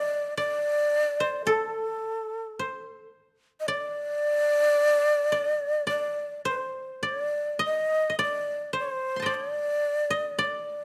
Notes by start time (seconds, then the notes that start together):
Already playing: D5 G5 A5 C6
0.37 D5
1.20 C5
1.45 A4
2.59 C5
3.60 D#5
3.67 D5
5.32 D5
5.45 D#5
5.87 D5
6.45 B4 C5
6.59 C5
7.03 D5
7.59 D#5
7.64 D#5
8.10 D#5
8.19 D5
8.73 C5
8.78 C5
9.16 A5 C6
9.22 D5 D#5 G5
9.34 D5
10.10 D#5
10.39 D5